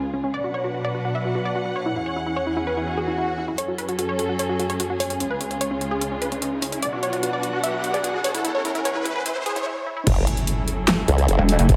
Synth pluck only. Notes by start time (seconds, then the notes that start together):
0.14 C#4
0.24 C#4
0.34 D5
0.44 F#4
0.54 C#5
0.64 F#4
0.74 F#4
0.85 D5
0.95 F#4
1.05 F#4
1.15 E5
1.25 F#4
1.35 F#4
1.45 D5
1.56 F#4
1.66 F#4
1.76 C#5
1.86 E4
1.96 E4
2.06 C#5
2.16 E4
2.26 E4
2.36 C#5
2.47 E4
2.57 E4
2.67 B4
2.77 E4
2.87 E4
2.97 G#4
3.07 E4
3.18 E4
3.38 E4
3.48 E4
3.58 C#5
3.68 F#4
3.78 B4
3.89 F#4
3.99 F#4
4.09 C#5
4.19 F#4
4.29 F#4
4.39 C#5
4.49 F#4
4.60 F#4
4.70 C#5
4.80 F#4
4.90 F#4
5.00 C#5
5.10 C#4
5.20 C#4
5.31 B4
5.41 C#4
5.51 C#4
5.61 C#5
5.71 C#4
5.81 C#4
5.91 G#4
6.01 C#4
6.12 C#4
6.22 B4
6.32 C#4
6.42 C#4
6.62 C#4
6.72 C#4
6.82 D5
6.93 F#4
7.03 C#5
7.13 F#4
7.23 F#4
7.33 D5
7.43 F#4
7.53 F#4
7.64 E5
7.74 F#4
7.84 F#4
7.94 D5
8.04 F#4
8.14 F#4
8.24 C#5
8.34 E4
8.45 E4
8.55 C#5
8.65 E4
8.75 E4
8.85 C#5
8.95 E4
9.05 E4
9.16 B4
9.26 E4
9.36 E4
9.46 G#4
9.56 E4
9.66 E4
9.86 E4
9.97 E4